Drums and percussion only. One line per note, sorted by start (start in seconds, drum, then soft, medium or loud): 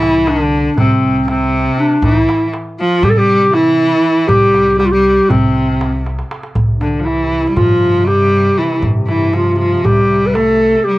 0.02 darbuka tek medium
0.27 darbuka tek medium
0.77 darbuka dum medium
1.03 darbuka ka soft
1.28 darbuka tek medium
2.04 darbuka dum medium
2.29 darbuka tek medium
2.53 darbuka tek medium
2.79 darbuka ka soft
3.04 darbuka dum medium
3.29 darbuka ka soft
3.54 darbuka tek medium
4.04 darbuka ka soft
4.29 darbuka dum medium
4.54 darbuka tek medium
4.80 darbuka tek medium
5.05 darbuka ka soft
5.30 darbuka dum medium
5.56 darbuka ka soft
5.81 darbuka tek medium
5.94 darbuka ka soft
6.06 darbuka tek medium
6.18 darbuka ka medium
6.31 darbuka tek medium
6.43 darbuka ka medium
6.55 darbuka dum medium
6.81 darbuka tek medium
7.06 darbuka tek medium
7.57 darbuka dum medium
7.82 darbuka ka soft
8.07 darbuka tek medium
8.20 darbuka ka soft
8.83 darbuka dum medium
9.08 darbuka tek medium
9.33 darbuka tek medium
9.85 darbuka dum medium
10.35 darbuka tek medium
10.48 darbuka ka soft
10.85 darbuka ka soft